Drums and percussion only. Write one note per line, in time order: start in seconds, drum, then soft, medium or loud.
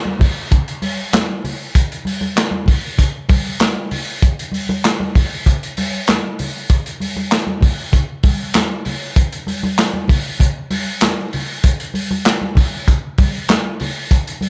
0.05 high conga medium
0.19 kick medium
0.19 open hi-hat medium
0.19 muted conga soft
0.19 low conga medium
0.51 kick medium
0.51 closed hi-hat medium
0.51 muted conga soft
0.51 low conga medium
0.68 closed hi-hat medium
0.82 open hi-hat medium
0.82 high conga medium
1.13 snare loud
1.13 clap loud
1.13 closed hi-hat medium
1.13 muted conga soft
1.13 high conga loud
1.44 open hi-hat medium
1.44 muted conga soft
1.44 low conga medium
1.75 kick loud
1.75 closed hi-hat loud
1.75 muted conga soft
1.92 closed hi-hat medium
2.05 open hi-hat medium
2.05 muted conga soft
2.05 high conga medium
2.21 high conga medium
2.36 snare loud
2.36 clap loud
2.36 closed hi-hat loud
2.36 muted conga soft
2.51 high conga medium
2.66 kick medium
2.66 open hi-hat medium
2.66 muted conga soft
2.66 low conga medium
2.98 kick medium
2.98 closed hi-hat medium
2.98 muted conga soft
2.98 low conga medium
3.28 kick loud
3.28 open hi-hat medium
3.28 high conga medium
3.60 snare loud
3.60 clap loud
3.60 closed hi-hat loud
3.60 high conga medium
3.91 open hi-hat medium
3.91 muted conga soft
3.91 low conga medium
4.22 kick loud
4.22 closed hi-hat loud
4.22 muted conga soft
4.39 closed hi-hat medium
4.52 open hi-hat medium
4.52 muted conga soft
4.52 high conga medium
4.69 high conga medium
4.85 snare loud
4.85 clap medium
4.85 closed hi-hat loud
5.00 high conga medium
5.15 kick medium
5.15 open hi-hat medium
5.15 muted conga soft
5.15 low conga medium
5.46 kick medium
5.46 closed hi-hat medium
5.46 muted conga soft
5.46 low conga medium
5.63 closed hi-hat medium
5.77 open hi-hat medium
5.77 muted conga soft
5.77 high conga medium
6.07 snare loud
6.07 clap loud
6.07 closed hi-hat loud
6.07 muted conga soft
6.07 high conga medium
6.39 open hi-hat medium
6.39 low conga medium
6.70 kick loud
6.70 closed hi-hat loud
6.70 muted conga soft
6.86 closed hi-hat medium
7.00 open hi-hat medium
7.00 high conga medium
7.16 high conga medium
7.32 snare loud
7.32 clap medium
7.32 closed hi-hat loud
7.32 muted conga soft
7.47 high conga medium
7.61 kick medium
7.61 open hi-hat medium
7.61 muted conga soft
7.61 low conga medium
7.92 kick medium
7.92 closed hi-hat medium
7.92 muted conga soft
7.92 low conga medium
8.23 kick loud
8.23 open hi-hat medium
8.23 high conga medium
8.54 snare loud
8.54 clap loud
8.54 closed hi-hat medium
8.54 muted conga soft
8.54 high conga medium
8.85 open hi-hat medium
8.85 muted conga soft
8.85 low conga medium
9.16 kick loud
9.16 closed hi-hat loud
9.16 muted conga soft
9.33 closed hi-hat medium
9.47 open hi-hat medium
9.47 muted conga soft
9.47 high conga medium
9.63 high conga medium
9.78 snare loud
9.78 clap medium
9.78 closed hi-hat loud
9.94 high conga medium
10.08 kick medium
10.08 open hi-hat medium
10.08 muted conga soft
10.08 low conga medium
10.39 kick medium
10.39 closed hi-hat medium
10.39 muted conga soft
10.39 low conga medium
10.71 open hi-hat medium
10.71 muted conga soft
10.71 high conga medium
11.01 snare loud
11.01 clap loud
11.01 closed hi-hat medium
11.01 high conga medium
11.33 open hi-hat medium
11.33 low conga medium
11.64 kick loud
11.64 closed hi-hat loud
11.64 muted conga soft
11.80 closed hi-hat medium
11.94 open hi-hat medium
11.94 high conga medium
12.11 high conga medium
12.26 snare loud
12.26 clap loud
12.26 closed hi-hat medium
12.41 high conga medium
12.55 kick medium
12.55 open hi-hat medium
12.55 low conga medium
12.87 kick medium
12.87 closed hi-hat medium
12.87 muted conga soft
12.87 low conga medium
13.18 kick loud
13.18 open hi-hat medium
13.18 muted conga soft
13.18 high conga medium
13.49 snare loud
13.49 clap loud
13.49 closed hi-hat loud
13.49 muted conga soft
13.49 high conga medium
13.80 open hi-hat medium
13.80 muted conga soft
13.80 low conga medium
14.11 kick loud
14.11 closed hi-hat loud
14.11 muted conga soft
14.27 closed hi-hat medium
14.41 open hi-hat medium
14.41 muted conga soft
14.41 high conga medium